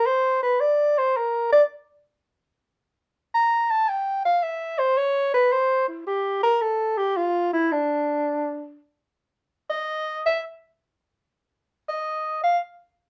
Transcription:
X:1
M:4/4
L:1/8
Q:"Swing" 1/4=110
K:Dm
V:1 name="Soprano saxophone"
c =B d c _B d z2 | z4 b a g f | e c _d =B c E G _B | A G F E D4 |
z3 _e2 =e z2 | z3 _e2 f z2 |]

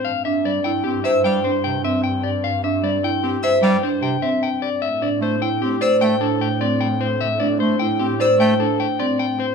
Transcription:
X:1
M:6/4
L:1/8
Q:1/4=151
K:Am
V:1 name="Violin"
z4 z e' f z4 z | z4 z e' f z4 z | z4 z e' g z4 z | z4 z e' g z4 z |]
V:2 name="Clean electric guitar"
f e d g G e g c g e g d | f e d g G e g c g e g d | e d c g G d g A g d g c | e d c g G d g A g d g c |]
V:3 name="Marimba"
z D z E z c z D z C z2 | z D z E z c z D z C z2 | z D z E z c z D z C z2 | z D z E z c z D z C z2 |]
V:4 name="Bass clarinet"
z2 G, z C z G, z C, z3 | z2 G, z C z G, z C, z3 | z2 A, z C z A, z4 z | z2 A, z C z A, z4 z |]
V:5 name="Double bass section" clef=bass
G,,12- | G,,12 | A,,12- | A,,12 |]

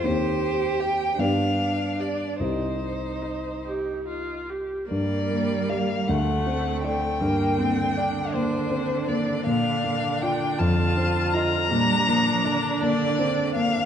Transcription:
X:1
M:6/8
L:1/16
Q:3/8=53
K:Cm
V:1 name="Violin"
c4 g2 f4 d2 | c6 z6 | [K:Gm] d4 f2 ^f4 g2- | g6 c4 d2 |
f4 g2 a4 b2- | b6 d4 f2 |]
V:2 name="Viola"
z4 G2 z4 G2 | z4 E2 G2 F2 G2 | [K:Gm] B,6 A,6 | B,2 C2 D8 |
D6 F6 | D12 |]
V:3 name="Grand piano"
[E,,CGc]6 [G,,=B,Gd]6 | [C,,CGe]12 | [K:Gm] G,,2 B,2 [Gd]2 D,,2 C2 [Ad]2 | G,,2 B,2 d2 B,2 C2 B,2 |
B,,2 B,2 [Fd]2 F,,2 C2 [Fe]2 | B,,2 B,2 d2 B,2 C2 B,2 |]
V:4 name="Cello" clef=bass
G6 D6 | E8- E z3 | [K:Gm] G,6 D,6 | D,12- |
D,12 | G,2 F,2 D,8 |]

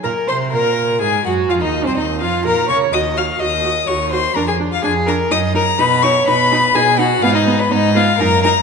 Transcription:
X:1
M:3/4
L:1/16
Q:1/4=125
K:Abmix
V:1 name="Violin"
b2 c'2 b4 a2 g2 | f e2 c e2 f2 b2 d'2 | e'2 f'2 e'4 d'2 c'2 | b a2 f a2 b2 e'2 b2 |
[K:Abdor] =b2 d'2 b4 a2 ^f2 | f e2 c e2 f2 b2 b2 |]
V:2 name="Violin"
B2 c2 B4 A2 G2 | F E2 C E2 F2 B2 d2 | e2 f2 e4 d2 c2 | B A2 F A2 B2 e2 B2 |
[K:Abdor] =B2 d2 B4 A2 ^F2 | F E2 C E2 F2 B2 B2 |]
V:3 name="Viola"
B2 c2 B4 A2 G2 | F E2 C E2 F2 B2 d2 | G2 G2 G2 G2 G2 G2 | =D2 D2 D2 D2 E2 E2 |
[K:Abdor] ^D2 D2 D2 D2 D2 D2 | C2 C2 C2 C2 E2 E2 |]
V:4 name="Cello" clef=bass
B,,2 C,2 B,,4 A,,2 G,,2 | F,, E,,2 C,, E,,2 F,,2 B,,2 D,2 | E,,4 E,,4 E,,4 | F,,4 F,,4 G,,4 |
[K:Abdor] =B,,4 B,,4 B,,4 | A,,4 A,,4 G,,4 |]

